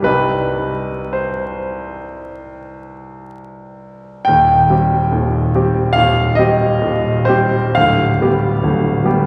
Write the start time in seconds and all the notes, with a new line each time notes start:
0.02 C2 G3 C4 D#4 B4
1.13 C5
4.25 D#1 D#2 G5
4.70 G3 C4 G4
5.12 D#1 D#2
5.55 G3 C4 G4
5.93 D#1 D#2 F5
6.35 G3 C4 G4 D#5
6.81 D#1 D#2
7.25 G3 C4 C5
7.29 G4
7.75 D1 D2 F5
8.21 G3 B3 G4
8.63 D1 D2
9.04 G3 B3 G4